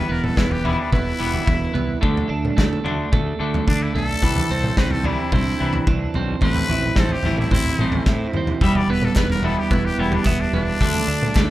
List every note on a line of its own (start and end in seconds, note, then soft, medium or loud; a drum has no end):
0.00 1.18 E3 medium
0.00 0.13 B4 medium
0.09 0.29 E1 medium
0.09 0.34 E3 medium
0.09 0.34 G3 medium
0.09 0.36 B3 medium
0.09 0.25 A#4 medium
0.24 0.40 A4 medium
0.24 mid tom medium
0.37 0.76 E1 medium
0.37 0.62 E3 medium
0.37 0.62 G3 medium
0.37 0.91 B3 medium
0.37 0.53 E4 medium
0.37 kick loud
0.37 snare medium
0.51 0.68 G4 medium
0.51 floor tom medium
0.64 0.90 E3 medium
0.64 0.91 G3 medium
0.64 0.91 B3 medium
0.64 1.45 E4 medium
0.64 0.81 E4 medium
0.64 floor tom medium
0.80 0.92 D4 medium
0.92 1.12 E1 medium
0.92 1.17 E3 medium
0.92 1.17 G3 medium
0.92 1.73 B3 medium
0.92 2.00 E4 medium
0.92 kick loud
0.92 floor tom medium
0.92 mid tom medium
1.19 1.39 E1 medium
1.19 1.45 E3 medium
1.19 2.02 E3 medium
1.19 1.45 G3 medium
1.19 1.46 B3 loud
1.34 floor tom medium
1.46 1.67 E1 medium
1.46 1.72 E3 medium
1.46 1.72 G3 medium
1.46 2.02 E4 medium
1.46 kick loud
1.46 floor tom medium
1.74 1.94 C2 medium
1.74 1.99 E3 medium
1.74 1.99 G3 medium
1.74 2.01 B3 medium
1.74 floor tom medium
2.01 2.22 D2 medium
2.01 2.27 D3 medium
2.01 2.55 A3 medium
2.01 2.28 A3 medium
2.01 2.28 D4 loud
2.01 kick loud
2.01 floor tom medium
2.17 floor tom medium
2.29 2.49 D2 medium
2.29 2.54 D3 medium
2.29 2.54 A3 medium
2.29 2.84 D4 medium
2.45 mid tom medium
2.57 2.77 D2 medium
2.57 2.82 D3 medium
2.57 3.11 A3 medium
2.57 2.82 A3 medium
2.57 kick loud
2.57 snare medium
2.73 floor tom medium
2.84 3.04 D2 medium
2.84 3.10 D3 medium
2.84 3.10 A3 medium
2.84 3.66 D4 medium
2.84 3.11 D4 loud
2.84 floor tom medium
3.11 3.32 D2 medium
3.11 3.37 D3 medium
3.11 3.37 A3 medium
3.11 3.39 A3 medium
3.11 kick loud
3.11 floor tom medium
3.11 mid tom medium
3.39 3.59 D2 medium
3.39 3.65 D3 medium
3.39 3.65 A3 medium
3.39 3.94 A3 medium
3.39 3.66 D4 medium
3.54 floor tom medium
3.67 3.87 D3 medium
3.67 4.22 D4 medium
3.67 3.84 D4 loud
3.67 kick loud
3.67 floor tom medium
3.83 3.95 E4 medium
3.95 4.14 B1 medium
3.95 4.19 D3 medium
3.95 4.22 A3 medium
3.95 4.20 A3 medium
3.95 4.76 A4 loud
3.95 floor tom medium
4.22 4.42 C2 medium
4.22 4.48 C3 medium
4.22 4.48 E3 medium
4.22 5.60 E3 medium
4.22 4.48 G3 medium
4.22 kick medium
4.22 floor tom medium
4.36 floor tom medium
4.49 4.69 C2 medium
4.49 4.74 C3 medium
4.49 4.74 E3 medium
4.49 4.77 C4 medium
4.63 mid tom medium
4.76 5.16 C2 medium
4.76 5.02 C3 medium
4.76 5.02 E3 medium
4.76 5.32 C4 medium
4.76 4.93 B4 medium
4.76 kick loud
4.76 snare medium
4.90 5.08 A4 medium
4.90 floor tom medium
5.04 5.30 C3 medium
5.04 5.30 E3 medium
5.04 5.31 G3 loud
5.04 5.87 D4 medium
5.04 5.32 E4 medium
5.04 floor tom medium
5.32 5.52 C2 medium
5.32 5.57 C3 medium
5.32 5.57 E3 medium
5.32 6.14 C4 medium
5.32 5.86 E4 medium
5.32 kick loud
5.32 floor tom medium
5.32 mid tom medium
5.59 5.80 C2 medium
5.59 5.85 C3 medium
5.59 5.86 E3 medium
5.59 8.62 E3 medium
5.59 5.86 G3 medium
5.73 floor tom medium
5.87 6.07 C2 medium
5.87 6.12 C3 medium
5.87 6.12 E3 medium
5.87 6.43 D4 medium
5.87 kick loud
5.87 floor tom medium
6.14 6.34 B1 medium
6.14 6.40 C3 medium
6.14 6.40 E3 medium
6.14 6.41 C4 medium
6.14 floor tom medium
6.41 6.61 A1 medium
6.41 6.67 A2 medium
6.41 6.68 E3 medium
6.41 6.68 A3 medium
6.41 6.97 C4 medium
6.41 7.00 B4 loud
6.41 kick medium
6.41 floor tom medium
6.55 floor tom medium
6.69 6.89 A1 medium
6.69 6.94 A2 medium
6.69 6.94 E3 medium
6.69 7.25 E4 medium
6.69 floor tom medium
6.82 mid tom medium
6.96 7.16 A1 medium
6.96 7.21 A2 medium
6.96 7.22 E3 medium
6.96 7.51 C4 medium
6.96 7.14 A4 medium
6.96 kick loud
6.96 snare medium
7.09 7.38 G4 medium
7.09 floor tom medium
7.23 7.43 A1 medium
7.23 7.50 A2 medium
7.23 7.51 E3 loud
7.23 7.51 A3 loud
7.23 8.07 E4 medium
7.23 floor tom medium
7.38 7.52 E4 medium
7.38 mid tom medium
7.51 7.71 A1 medium
7.51 7.77 A2 medium
7.51 7.77 E3 medium
7.51 7.80 C4 medium
7.51 8.06 E4 loud
7.51 kick loud
7.51 floor tom medium
7.51 mid tom medium
7.65 floor tom medium
7.78 7.98 A1 medium
7.78 8.05 A2 medium
7.78 8.06 E3 medium
7.78 8.06 A3 medium
7.78 8.35 C4 medium
7.78 mid tom medium
7.92 floor tom medium
8.06 8.26 A2 medium
8.06 8.32 E3 medium
8.06 8.62 E4 medium
8.06 kick loud
8.06 snare medium
8.33 8.53 D#2 medium
8.33 8.59 A2 medium
8.33 8.59 E3 medium
8.33 8.63 C4 medium
8.33 mid tom medium
8.47 floor tom medium
8.61 8.81 E1 medium
8.61 8.88 E3 medium
8.61 9.98 G3 medium
8.61 8.88 G3 medium
8.61 8.88 B3 medium
8.61 8.78 E5 medium
8.61 kick loud
8.61 floor tom medium
8.75 8.93 D5 medium
8.75 floor tom medium
8.88 9.08 E1 medium
8.88 9.14 E3 medium
8.88 9.14 G3 medium
8.88 9.16 B3 medium
8.88 9.06 B4 medium
9.02 9.19 A4 medium
9.02 mid tom medium
9.15 9.55 E1 medium
9.15 9.41 E3 medium
9.15 9.42 G3 medium
9.15 9.70 B3 medium
9.15 9.30 B4 medium
9.15 kick loud
9.15 snare medium
9.15 clap medium
9.30 9.47 A#4 medium
9.30 floor tom medium
9.43 9.70 E3 medium
9.43 9.70 G3 loud
9.43 9.70 B3 loud
9.43 10.25 E4 medium
9.43 9.60 A4 medium
9.43 floor tom medium
9.59 9.71 G4 medium
9.71 9.90 E1 medium
9.71 9.96 E3 medium
9.71 9.96 G3 medium
9.71 10.53 B3 medium
9.71 9.87 E4 medium
9.71 kick loud
9.71 clap medium
9.71 floor tom medium
9.71 mid tom medium
9.85 10.02 G4 medium
9.98 10.18 E1 medium
9.98 10.24 E3 medium
9.98 10.25 G3 medium
9.98 10.81 G3 medium
9.98 10.25 B3 medium
9.98 10.15 E4 medium
10.12 10.26 D4 medium
10.12 floor tom medium
10.25 10.45 E1 medium
10.25 10.51 E3 medium
10.25 10.51 G3 medium
10.25 10.42 B3 medium
10.25 10.81 E4 medium
10.25 kick loud
10.25 clap medium
10.25 floor tom medium
10.41 10.53 D4 medium
10.53 10.73 E1 medium
10.53 10.78 E3 medium
10.53 10.79 G3 medium
10.53 10.81 B3 medium
10.53 11.50 D4 loud
10.53 floor tom medium
10.81 11.00 D2 medium
10.81 11.07 D3 medium
10.81 11.35 A3 medium
10.81 11.07 A3 medium
10.81 11.07 D4 loud
10.81 kick medium
10.81 floor tom medium
10.94 floor tom medium
11.08 11.27 D2 medium
11.08 11.33 D3 medium
11.08 11.33 A3 medium
11.08 11.50 D4 medium
11.22 mid tom medium
11.35 11.50 D2 medium
11.35 11.50 D3 medium
11.35 11.50 A3 medium
11.35 kick loud
11.35 snare medium
11.35 clap loud